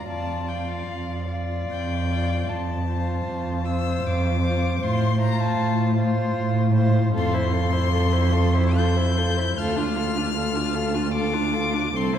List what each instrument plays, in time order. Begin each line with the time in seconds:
0.06 cello F2, viola F4, violin D5 A5
0.46 viola F4, violin D5 G5
0.68 violin F5
0.87 cello F2
1.27 viola F4, violin D5
1.70 cello F2, violin G5
2.09 viola F4, violin D5
2.48 cello F2, violin A5
2.86 viola F4, violin C5
3.25 cello F2
3.64 viola F4, violin C5 E6
4.04 cello F2, violin D6
4.41 viola F4, violin C5
4.78 cello A2, viola F4, violin C5
4.83 violin C6
5.18 viola F4, violin C5 A#5
5.40 violin A5
5.59 cello A2
5.96 viola F4, violin C5
6.37 cello A2
6.74 viola F4, violin C5
7.14 cello F2, viola F4, violin A4 C6
7.34 viola E4, violin C5
7.52 viola F4, violin A4
7.72 viola E4, violin C5
7.92 viola F4, violin A4
8.12 viola E4, violin C5
8.32 viola F4, violin A4
8.54 viola E4, violin C5
8.75 viola F4, violin A4 G6
8.96 viola E4, violin C5
9.17 viola F4, violin A4
9.36 viola E4, violin C5
9.57 cello D2, viola F4, violin A4 F6
9.76 viola D4, violin F4
9.96 viola F4, violin A4
10.16 viola D4, violin F4
10.35 viola F4, violin A4
10.55 viola D4, violin F4
10.74 viola F4, violin A4
10.95 viola D4, violin F4
11.13 viola F4, violin A4 D6
11.33 viola D4, violin F4
11.53 viola F4, violin A4
11.73 viola D4, violin F4
11.93 cello C2, viola C4, violin A4 C6
12.13 viola E4, violin C5